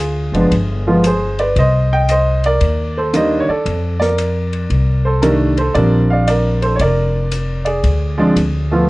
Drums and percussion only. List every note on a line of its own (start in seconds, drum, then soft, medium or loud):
0.35 ride soft
0.52 kick soft
0.52 ride medium
1.04 hi-hat pedal medium
1.04 ride medium
1.39 ride soft
1.56 kick soft
1.56 ride medium
2.09 hi-hat pedal medium
2.09 ride medium
2.44 ride soft
2.61 kick soft
2.61 ride medium
3.13 hi-hat pedal medium
3.13 ride medium
3.66 kick soft
3.66 ride medium
4.01 snare soft
4.18 hi-hat pedal soft
4.18 ride medium
4.53 ride soft
4.70 kick soft
4.70 ride soft
5.22 hi-hat pedal medium
5.22 ride medium
5.57 ride soft
5.75 kick soft
5.75 ride soft
6.27 hi-hat pedal soft
6.27 ride medium
6.62 ride soft
6.80 kick soft
6.80 ride medium
7.32 hi-hat pedal medium
7.32 ride medium
7.66 ride soft
7.84 kick soft
7.84 ride medium
8.37 hi-hat pedal medium
8.37 ride medium